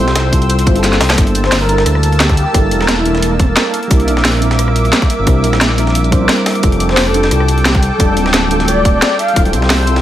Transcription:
Already playing: G3 C4 E4 F4 A4 C5 G5 E6
0.00 C2
0.08 snare, closed hi-hat
0.16 snare, closed hi-hat
0.31 G3 C4 E4 F4 A4, kick, closed hi-hat
0.42 closed hi-hat
0.49 closed hi-hat
0.59 closed hi-hat
0.65 G1 G3 C4 E4 F4 C5, kick, closed hi-hat
0.73 G3 C4 E4, closed hi-hat
0.77 F4 A4
0.83 snare, closed hi-hat
0.93 snare, closed hi-hat
1.01 C2, snare, closed hi-hat, open hi-hat
1.10 snare, closed hi-hat, open hi-hat
1.14 G1 G3 A#3 D4 A5 E6, kick, closed hi-hat
1.19 E4 A4
1.27 closed hi-hat
1.35 closed hi-hat
1.44 C5, snare
1.52 snare, closed hi-hat, open hi-hat
1.61 A#4
1.66 G3 A#3 D4, closed hi-hat
1.71 E4 A4
1.78 snare, closed hi-hat
1.86 D2, cross-stick, closed hi-hat
1.95 cross-stick
2.03 closed hi-hat
2.12 closed hi-hat
2.20 G4, snare, closed hi-hat
2.29 G4, kick, closed hi-hat
2.37 G4, closed hi-hat
2.53 G1 G3 A#3 D4 E4 A4, kick, closed hi-hat
2.71 E1, closed hi-hat
2.81 A#4, cross-stick, snare
2.88 A#4, snare, closed hi-hat
2.97 E4
3.04 G3 A#3 D4 E4 A4, closed hi-hat
3.15 snare, closed hi-hat
3.22 closed hi-hat
3.39 kick, closed hi-hat
3.56 snare, closed hi-hat
3.74 E5 D6, closed hi-hat
3.83 closed hi-hat
3.87 C2 G3 C4 D4, kick, closed hi-hat
3.92 E4 A#4
4.00 closed hi-hat
4.08 A#1, closed hi-hat
4.17 snare
4.25 snare, closed hi-hat, open hi-hat
4.38 G3 C4 D4, closed hi-hat
4.44 E4 A#4
4.51 snare, closed hi-hat
4.59 cross-stick, closed hi-hat
4.68 cross-stick
4.76 closed hi-hat
4.85 closed hi-hat
4.93 snare, closed hi-hat
5.02 kick, closed hi-hat
5.10 closed hi-hat
5.19 G1
5.25 C2 G3 C4 D4 E4 A#4, kick, closed hi-hat
5.44 A#1, closed hi-hat
5.53 cross-stick, snare, closed hi-hat
5.61 snare, closed hi-hat
5.70 snare
5.77 G3 C4 D4 E4 A#4, closed hi-hat
5.87 snare, closed hi-hat
5.95 closed hi-hat
6.04 closed hi-hat
6.10 G3 C4 D4 E4 C5, kick, closed hi-hat
6.18 G3 C4 D4
6.23 E4 A#4
6.29 snare, closed hi-hat, open hi-hat
6.46 snare, closed hi-hat, open hi-hat
6.55 closed hi-hat
6.60 F1 G3 C4 D4 A4 G5, kick, closed hi-hat
6.65 F4 A4
6.72 closed hi-hat
6.80 closed hi-hat
6.89 C5, snare
6.97 snare, closed hi-hat, open hi-hat
7.06 A4
7.11 G3 C4 D4, closed hi-hat
7.16 F4 A4
7.23 snare, closed hi-hat
7.31 C2, cross-stick, closed hi-hat
7.40 cross-stick
7.48 closed hi-hat
7.58 closed hi-hat
7.65 G4, snare, closed hi-hat
7.75 G4, kick, closed hi-hat
7.83 closed hi-hat
7.92 A4
7.98 F1 G3 C4 D4 F4 A4, kick, closed hi-hat
8.17 D1, closed hi-hat
8.26 cross-stick, snare
8.34 snare, closed hi-hat
8.49 G3 C4 D4 F4 A4, closed hi-hat
8.60 A4, snare, closed hi-hat
8.68 D5, closed hi-hat
8.85 kick, closed hi-hat
8.94 D5
9.02 snare, closed hi-hat
9.19 F5, closed hi-hat
9.28 closed hi-hat
9.33 D1 G3 C4 E4 C5 E6, kick, closed hi-hat
9.38 F4 A4
9.45 closed hi-hat
9.53 C2, closed hi-hat
9.62 snare
9.70 snare, closed hi-hat, open hi-hat
9.84 G3 C4 E4, closed hi-hat
9.89 F4 A4
9.96 snare, closed hi-hat

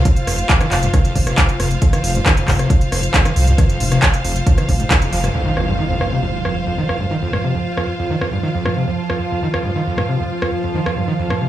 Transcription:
Already playing: F4 C5 F5
0.05 F2, kick, closed hi-hat
0.17 closed hi-hat
0.27 F1 F2, cross-stick, open hi-hat
0.39 closed hi-hat
0.49 F2, kick, clap, closed hi-hat
0.60 D#3, cross-stick, closed hi-hat
0.71 F1 F2, clap, open hi-hat
0.83 G2, closed hi-hat
0.93 D#3, kick, cross-stick, closed hi-hat
1.05 F2, closed hi-hat
1.15 F1 G#2, kick, open hi-hat
1.27 C3, cross-stick, closed hi-hat
1.38 F2, kick, clap, closed hi-hat
1.49 closed hi-hat
1.60 F1 F2, cross-stick, open hi-hat
1.71 closed hi-hat
1.82 F2, kick, closed hi-hat
1.93 D#3, cross-stick, closed hi-hat
2.04 F1 F2, open hi-hat
2.15 G2, closed hi-hat
2.26 D#3, kick, cross-stick, clap, closed hi-hat
2.37 F2, closed hi-hat
2.48 F1 G#2, kick, clap, open hi-hat
2.59 C3, cross-stick, closed hi-hat
2.70 F2, kick, closed hi-hat
2.81 closed hi-hat
2.92 F1 F2, cross-stick, open hi-hat
3.03 closed hi-hat
3.14 F2, kick, clap, closed hi-hat
3.25 D#3, cross-stick, closed hi-hat
3.36 C2 F2, open hi-hat
3.47 G2, closed hi-hat
3.58 D#3, kick, cross-stick, closed hi-hat
3.69 F2, closed hi-hat
3.80 F1 G#2, open hi-hat
3.92 C3, cross-stick, closed hi-hat
4.02 kick, clap, closed hi-hat
4.14 closed hi-hat
4.24 F1 F2, open hi-hat
4.36 closed hi-hat
4.46 F2, kick, closed hi-hat
4.58 D#3, cross-stick, closed hi-hat
4.69 F1 F3, kick, open hi-hat
4.80 G#2, closed hi-hat
4.91 F3, kick, cross-stick, clap, closed hi-hat
5.02 F2, closed hi-hat
5.13 F1 F3, open hi-hat
5.24 G2, cross-stick, closed hi-hat
5.35 F2 F3 F4, impact
5.46 D#3
5.57 F2, cross-stick
5.68 G2
5.79 D#3
5.90 F2
6.01 G#2, cross-stick
6.12 C3
6.23 F2
6.45 F2, cross-stick
6.67 F2
6.78 D#3
6.89 F2, cross-stick
7.00 G2
7.11 D#3
7.22 F2
7.33 G#2, cross-stick
7.44 C3
7.55 F2
7.77 F2, cross-stick
7.99 F2
8.10 D#3
8.21 F2, cross-stick
8.32 G2
8.43 D#3
8.55 F2
8.65 G#2, cross-stick
8.77 C3
8.87 F2
9.10 F2, cross-stick
9.32 F2
9.43 D#3
9.54 F2, cross-stick
9.65 G2
9.76 D#3
9.87 F2
9.98 G#2, cross-stick
10.09 C3
10.20 F2
10.42 F2, cross-stick
10.64 F2
10.75 D#3
10.86 F2, cross-stick
10.97 G2
11.08 D#3
11.19 F2
11.30 G#2, cross-stick
11.41 C3

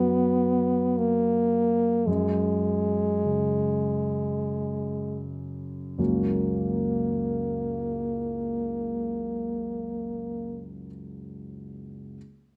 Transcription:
Already playing: F#2 F#3 B3
0.98 A#3
2.07 F#2 G#3
3.25 C#3
5.98 F#1 C#2 F#3 A#3 C#4 F#4

